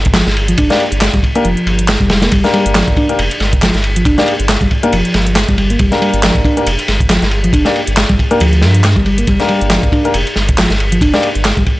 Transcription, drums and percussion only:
0.05 kick, closed hi-hat
0.14 snare, clap, closed hi-hat, ride
0.27 snare, closed hi-hat
0.37 ride
0.48 closed hi-hat
0.57 kick, closed hi-hat, ride
0.70 snare, closed hi-hat
0.80 ride
0.92 closed hi-hat
1.01 snare, clap, closed hi-hat, ride
1.14 kick, closed hi-hat
1.23 kick, ride
1.35 closed hi-hat
1.45 closed hi-hat
1.57 closed hi-hat
1.67 ride
1.79 closed hi-hat
1.88 snare, clap, closed hi-hat, ride
2.00 kick, closed hi-hat
2.10 snare, ride
2.22 snare, closed hi-hat, ride
2.32 kick, closed hi-hat, ride
2.44 snare, closed hi-hat
2.54 ride
2.66 closed hi-hat
2.75 snare, clap, closed hi-hat, ride
2.88 kick, closed hi-hat
2.97 kick, ride
3.09 closed hi-hat
3.19 closed hi-hat, ride
3.31 closed hi-hat, ride
3.40 snare, ride
3.53 kick, closed hi-hat
3.62 snare, clap, closed hi-hat, ride
3.74 snare, closed hi-hat
3.84 ride
3.96 closed hi-hat
4.05 kick, closed hi-hat, ride
4.18 snare, closed hi-hat
4.28 ride
4.40 closed hi-hat
4.48 snare, clap, closed hi-hat, ride
4.61 kick, closed hi-hat
4.71 kick, ride
4.83 closed hi-hat
4.93 closed hi-hat, ride
5.05 closed hi-hat
5.14 snare, ride
5.27 closed hi-hat
5.36 snare, clap, closed hi-hat, ride
5.48 kick, closed hi-hat
5.58 ride
5.70 closed hi-hat
5.79 kick, closed hi-hat, ride
5.92 snare, closed hi-hat
6.02 ride
6.14 closed hi-hat
6.23 snare, clap, closed hi-hat, ride
6.35 kick, closed hi-hat
6.45 kick, ride
6.57 closed hi-hat
6.67 closed hi-hat, ride
6.79 closed hi-hat, ride
6.88 snare, ride
7.00 kick, closed hi-hat
7.09 snare, clap, closed hi-hat, ride
7.22 snare, closed hi-hat
7.31 ride
7.44 closed hi-hat
7.53 kick, closed hi-hat, ride
7.65 snare, closed hi-hat
7.76 ride
7.87 closed hi-hat
7.97 snare, clap, closed hi-hat, ride
8.09 kick, closed hi-hat
8.19 kick, ride
8.31 closed hi-hat
8.40 closed hi-hat, ride
8.53 closed hi-hat
8.62 snare, ride
8.74 closed hi-hat
8.84 snare, clap, closed hi-hat, ride
8.96 kick, closed hi-hat
9.06 ride
9.18 closed hi-hat
9.27 kick, closed hi-hat, ride
9.40 snare, closed hi-hat
9.48 ride
9.61 closed hi-hat
9.70 snare, clap, closed hi-hat, ride
9.83 kick, closed hi-hat
9.92 kick, ride
10.05 closed hi-hat
10.14 closed hi-hat, ride
10.27 closed hi-hat, ride
10.36 snare, ride
10.49 kick, closed hi-hat
10.58 snare, clap, closed hi-hat, ride
10.70 snare, closed hi-hat
10.80 ride
10.92 closed hi-hat
11.01 kick, closed hi-hat, ride
11.14 snare, closed hi-hat
11.23 ride
11.35 closed hi-hat
11.45 snare, clap, closed hi-hat, ride
11.57 kick, closed hi-hat
11.66 kick, ride

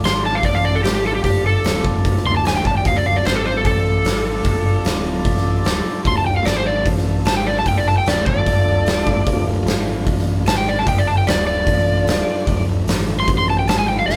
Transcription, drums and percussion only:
0.04 snare, open hi-hat
0.43 kick, open hi-hat
0.84 snare, open hi-hat
1.24 kick, open hi-hat
1.64 snare, open hi-hat
1.85 kick
2.05 kick, open hi-hat
2.17 snare
2.45 snare, open hi-hat
2.65 kick
2.85 kick, open hi-hat
3.25 snare, open hi-hat
3.65 kick, open hi-hat
4.05 snare, open hi-hat
4.44 kick, open hi-hat
4.85 snare, open hi-hat
5.25 kick, open hi-hat
5.37 snare
5.65 snare, open hi-hat
6.05 kick, open hi-hat
6.45 snare, open hi-hat
6.86 kick, open hi-hat
6.98 snare
7.25 snare, open hi-hat
7.66 kick, open hi-hat
8.06 snare, open hi-hat
8.26 kick
8.46 kick, open hi-hat
8.86 snare, open hi-hat
9.07 kick
9.27 kick, open hi-hat
9.67 snare, open hi-hat
10.07 kick, open hi-hat
10.19 snare
10.46 snare, open hi-hat
10.87 kick, open hi-hat
11.27 snare, open hi-hat
11.67 kick, open hi-hat
12.07 snare, open hi-hat
12.47 kick, open hi-hat
12.88 snare, open hi-hat
13.28 kick, open hi-hat
13.68 snare, open hi-hat
14.09 snare

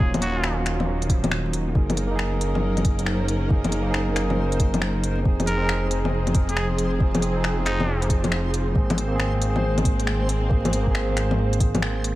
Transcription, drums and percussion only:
0.00 kick
0.14 closed hi-hat, low bongo
0.22 closed hi-hat
0.44 finger snap
0.66 finger snap, closed hi-hat
0.80 low bongo
1.02 closed hi-hat
1.09 kick, closed hi-hat
1.24 closed hi-hat, low bongo
1.32 finger snap
1.53 closed hi-hat
1.75 kick
1.90 closed hi-hat, low bongo
1.97 closed hi-hat
2.19 finger snap
2.41 closed hi-hat
2.55 low bongo
2.77 closed hi-hat, low bongo
2.85 kick, closed hi-hat
2.99 closed hi-hat
3.06 finger snap
3.28 closed hi-hat
3.50 kick
3.64 closed hi-hat, low bongo
3.72 closed hi-hat
3.94 finger snap
4.16 finger snap, closed hi-hat
4.30 low bongo
4.52 closed hi-hat
4.60 kick, closed hi-hat
4.74 closed hi-hat, low bongo
4.82 finger snap
5.04 closed hi-hat
5.25 kick
5.40 closed hi-hat, low bongo
5.47 closed hi-hat
5.69 finger snap
5.91 closed hi-hat
6.05 low bongo
6.27 closed hi-hat, low bongo
6.35 kick, closed hi-hat
6.49 closed hi-hat
6.57 finger snap
6.79 closed hi-hat
7.00 kick
7.15 closed hi-hat, low bongo
7.22 closed hi-hat
7.44 finger snap
7.66 finger snap, closed hi-hat
7.80 low bongo
8.02 closed hi-hat
8.10 kick, closed hi-hat
8.24 closed hi-hat, low bongo
8.32 finger snap
8.54 closed hi-hat
8.75 kick
8.90 closed hi-hat, low bongo
8.98 closed hi-hat
9.20 finger snap
9.42 closed hi-hat
9.56 low bongo
9.78 closed hi-hat, low bongo
9.85 kick, closed hi-hat
10.00 closed hi-hat
10.07 finger snap
10.29 closed hi-hat
10.51 kick
10.65 closed hi-hat, low bongo
10.73 closed hi-hat
10.87 kick
10.95 finger snap
11.17 finger snap, closed hi-hat
11.31 low bongo
11.53 closed hi-hat
11.60 kick, closed hi-hat
11.75 closed hi-hat, low bongo
11.82 finger snap
12.04 closed hi-hat

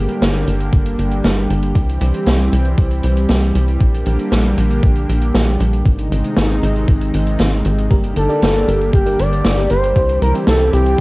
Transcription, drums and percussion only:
0.09 closed hi-hat
0.22 snare, closed hi-hat
0.34 closed hi-hat
0.47 closed hi-hat
0.60 closed hi-hat
0.73 kick, closed hi-hat
0.86 closed hi-hat
0.99 closed hi-hat
1.11 closed hi-hat
1.24 snare, closed hi-hat
1.38 closed hi-hat
1.50 closed hi-hat
1.62 closed hi-hat
1.75 kick, closed hi-hat
1.89 closed hi-hat
2.01 closed hi-hat
2.14 closed hi-hat
2.26 snare, closed hi-hat
2.40 closed hi-hat
2.53 closed hi-hat
2.65 closed hi-hat
2.78 kick, closed hi-hat
2.91 closed hi-hat
3.03 closed hi-hat
3.17 closed hi-hat
3.29 snare, closed hi-hat
3.43 closed hi-hat
3.55 closed hi-hat
3.68 closed hi-hat
3.80 kick, closed hi-hat
3.94 closed hi-hat
4.06 closed hi-hat
4.19 closed hi-hat
4.32 snare, closed hi-hat
4.45 closed hi-hat
4.58 closed hi-hat
4.71 closed hi-hat
4.83 kick, closed hi-hat
4.95 closed hi-hat
5.09 closed hi-hat
5.22 closed hi-hat
5.35 snare, closed hi-hat
5.48 closed hi-hat
5.60 closed hi-hat
5.73 closed hi-hat
5.86 kick, closed hi-hat
5.98 closed hi-hat
6.12 closed hi-hat
6.24 closed hi-hat
6.37 snare, closed hi-hat
6.50 closed hi-hat
6.63 closed hi-hat
6.76 closed hi-hat
6.88 kick, closed hi-hat
7.01 closed hi-hat
7.14 closed hi-hat
7.27 closed hi-hat
7.39 snare, closed hi-hat
7.52 closed hi-hat
7.65 closed hi-hat
7.78 closed hi-hat
7.91 kick, closed hi-hat
8.04 closed hi-hat
8.16 closed hi-hat
8.30 closed hi-hat
8.42 snare, closed hi-hat
8.55 closed hi-hat
8.68 closed hi-hat
8.81 closed hi-hat
8.93 kick, closed hi-hat
9.06 closed hi-hat
9.19 closed hi-hat
9.32 closed hi-hat
9.45 snare, closed hi-hat
9.58 closed hi-hat
9.70 closed hi-hat
9.83 closed hi-hat
9.96 kick, closed hi-hat
10.09 closed hi-hat
10.22 closed hi-hat
10.35 closed hi-hat
10.47 snare, closed hi-hat
10.60 closed hi-hat
10.73 closed hi-hat
10.86 closed hi-hat

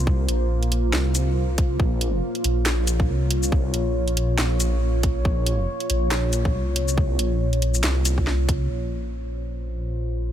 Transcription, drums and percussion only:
0.07 kick
0.29 closed hi-hat
0.63 closed hi-hat
0.72 closed hi-hat
0.93 snare
1.15 closed hi-hat, shaker
1.58 kick, closed hi-hat
1.80 kick
2.01 closed hi-hat
2.35 closed hi-hat
2.44 closed hi-hat
2.66 snare, clap
2.87 closed hi-hat, shaker
3.00 kick
3.31 closed hi-hat
3.43 shaker
3.52 kick
3.74 closed hi-hat
4.08 closed hi-hat
4.17 closed hi-hat
4.38 snare, clap
4.60 closed hi-hat, shaker
5.03 kick, closed hi-hat
5.25 kick
5.46 closed hi-hat
5.80 closed hi-hat
5.90 closed hi-hat
6.11 snare, clap
6.33 closed hi-hat, shaker
6.45 kick
6.76 closed hi-hat
6.88 shaker
6.98 kick
7.19 closed hi-hat
7.53 closed hi-hat
7.62 closed hi-hat
7.74 shaker
7.84 snare, clap
8.05 closed hi-hat, shaker
8.18 kick
8.27 snare
8.49 kick, closed hi-hat

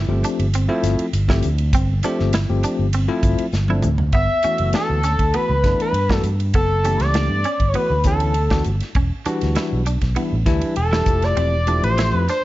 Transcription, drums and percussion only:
0.24 hi-hat pedal, ride
0.39 ride
0.54 hi-hat pedal, ride
0.83 snare, hi-hat pedal, ride
0.99 ride
1.13 hi-hat pedal, ride
1.29 kick, snare
1.42 hi-hat pedal, ride
1.58 ride
1.73 kick, hi-hat pedal, ride
2.03 hi-hat pedal, ride
2.20 snare
2.33 snare, hi-hat pedal, ride
2.63 hi-hat pedal, ride
2.93 hi-hat pedal, ride
3.23 kick, hi-hat pedal, ride
3.38 ride
3.52 snare, hi-hat pedal
3.68 high tom
3.82 hi-hat pedal, mid tom
3.98 floor tom
4.12 kick, ride
4.43 hi-hat pedal, ride
4.58 ride
4.73 snare, ride
5.03 snare, hi-hat pedal, ride
5.19 kick, ride
5.34 ride
5.64 kick, snare, hi-hat pedal, ride
5.80 ride
5.94 ride
6.09 kick, snare
6.23 hi-hat pedal, ride
6.40 ride
6.54 kick, ride
6.84 hi-hat pedal, ride
7.00 snare, ride
7.14 snare, ride
7.44 hi-hat pedal, ride
7.60 kick, ride
7.74 ride
8.04 kick, snare, hi-hat pedal, ride
8.20 ride
8.34 ride
8.50 kick, snare
8.64 hi-hat pedal, ride
8.80 snare, ride
8.95 kick, ride
9.25 hi-hat pedal, ride
9.41 snare, ride
9.55 snare, ride
9.86 hi-hat pedal, ride
10.01 kick, snare, ride
10.16 ride
10.46 kick, snare, hi-hat pedal, ride
10.61 ride
10.76 ride
10.93 snare
11.06 kick, hi-hat pedal, ride
11.22 snare, ride
11.37 ride
11.67 hi-hat pedal, ride
11.83 ride
11.98 snare, ride
12.28 snare, hi-hat pedal, ride

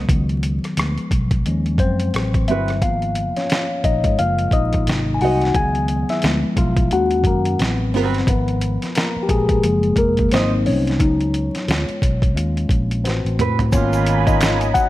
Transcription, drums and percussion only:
0.09 kick, closed hi-hat
0.29 closed hi-hat
0.43 closed hi-hat
0.64 cross-stick, closed hi-hat
0.77 cross-stick, closed hi-hat
0.98 closed hi-hat
1.11 kick, closed hi-hat
1.31 kick, closed hi-hat
1.46 closed hi-hat
1.66 closed hi-hat
1.78 kick, closed hi-hat
2.00 closed hi-hat
2.14 cross-stick, closed hi-hat
2.34 kick, closed hi-hat
2.48 closed hi-hat
2.68 cross-stick, closed hi-hat
2.82 kick, closed hi-hat
3.02 closed hi-hat
3.15 closed hi-hat
3.36 snare, closed hi-hat
3.50 snare, closed hi-hat
3.84 kick, closed hi-hat
4.04 kick, closed hi-hat
4.19 closed hi-hat
4.39 closed hi-hat
4.51 kick, closed hi-hat
4.73 kick, closed hi-hat
4.87 snare, closed hi-hat
5.21 open hi-hat
5.41 snare, closed hi-hat
5.55 kick, closed hi-hat
5.75 closed hi-hat
5.88 closed hi-hat
6.09 snare, closed hi-hat
6.22 snare, closed hi-hat
6.57 kick, closed hi-hat
6.77 kick, closed hi-hat
6.91 closed hi-hat
7.11 closed hi-hat
7.24 kick, closed hi-hat
7.45 closed hi-hat
7.59 snare, closed hi-hat
7.94 open hi-hat
8.14 snare, closed hi-hat
8.27 kick, closed hi-hat
8.48 closed hi-hat
8.61 closed hi-hat
8.82 snare, closed hi-hat
8.95 snare, closed hi-hat
9.29 kick, closed hi-hat
9.49 kick, closed hi-hat
9.64 closed hi-hat
9.83 closed hi-hat
9.96 kick, closed hi-hat
10.17 kick, closed hi-hat
10.31 snare, closed hi-hat
10.66 open hi-hat
10.87 snare, closed hi-hat
11.00 kick, closed hi-hat
11.21 closed hi-hat
11.34 closed hi-hat
11.55 snare, closed hi-hat
11.68 snare, closed hi-hat
11.89 closed hi-hat
12.02 kick, closed hi-hat
12.22 kick, closed hi-hat
12.37 closed hi-hat
12.57 closed hi-hat
12.69 kick, closed hi-hat
12.91 closed hi-hat
13.05 snare, closed hi-hat
13.26 closed hi-hat
13.39 closed hi-hat, mid tom
13.59 closed hi-hat, floor tom
13.72 kick, closed hi-hat, shaker
13.93 closed hi-hat, shaker
14.06 closed hi-hat, shaker
14.27 kick, closed hi-hat, shaker
14.41 finger snap, snare, closed hi-hat, shaker
14.61 closed hi-hat, shaker
14.75 kick, closed hi-hat, shaker

